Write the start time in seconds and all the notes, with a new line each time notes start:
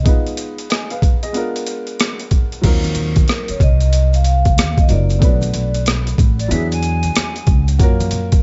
Already playing: D#5
0.03 G#3 B3 D#4 F4, kick, closed hi-hat
0.08 B4
0.27 closed hi-hat
0.37 closed hi-hat
0.58 closed hi-hat
0.70 D#5 G#5, cross-stick, closed hi-hat
0.90 B4 F5, closed hi-hat
1.02 kick, closed hi-hat
1.23 G#4 D#5, closed hi-hat
1.32 G#3 B3 D4 F4, closed hi-hat
1.37 A#4
1.56 closed hi-hat
1.67 closed hi-hat
1.87 closed hi-hat
2.00 cross-stick, closed hi-hat
2.20 closed hi-hat
2.31 kick, closed hi-hat
2.52 closed hi-hat
2.62 D#2 F#3 C4 D#4 F4, kick, closed hi-hat, crash, maracas
2.66 A#4
2.84 closed hi-hat, high conga, maracas
2.95 closed hi-hat, high conga, low conga, maracas
3.16 kick, closed hi-hat, maracas
3.28 A#4, cross-stick, closed hi-hat, maracas
3.48 C#5, muted upright bass stroke, closed hi-hat, maracas
3.60 C2 D#5, kick, closed hi-hat, low conga, maracas
3.81 closed hi-hat, maracas
3.93 closed hi-hat, maracas
4.13 F5, closed hi-hat, maracas
4.24 F5, closed hi-hat, maracas
4.45 kick, closed hi-hat, high conga, maracas
4.58 D#2, cross-stick, closed hi-hat, high conga, maracas
4.78 D#5, kick, closed hi-hat, maracas
4.88 F#1 F#3 C4 D#4 F4 A#4 D5, closed hi-hat, low conga, maracas
5.09 closed hi-hat, maracas
5.19 B1 A3 B3 C#4 F#4, kick, closed hi-hat, maracas
5.24 B4
5.28 D4
5.41 closed hi-hat, high conga, maracas
5.54 closed hi-hat, high conga, low conga, maracas
5.74 closed hi-hat, maracas
5.86 cross-stick, closed hi-hat, maracas
6.07 closed hi-hat, maracas
6.18 A1, kick, closed hi-hat, low conga, maracas
6.39 D5, closed hi-hat, maracas
6.48 E2 F#3 B3 D4 E4 E5, closed hi-hat, maracas
6.53 G#4
6.72 G#5, closed hi-hat, maracas
6.83 closed hi-hat, maracas
7.03 closed hi-hat, high conga, maracas
7.16 cross-stick, closed hi-hat, high conga, maracas
7.36 closed hi-hat, maracas
7.46 C#2, kick, closed hi-hat, low conga, maracas
7.68 closed hi-hat, maracas
7.79 F#2 A#3 C#4 F4 F#4, kick, closed hi-hat, maracas
7.83 A#4
8.00 closed hi-hat, high conga, maracas
8.11 closed hi-hat, high conga, low conga, maracas
8.32 kick, closed hi-hat, maracas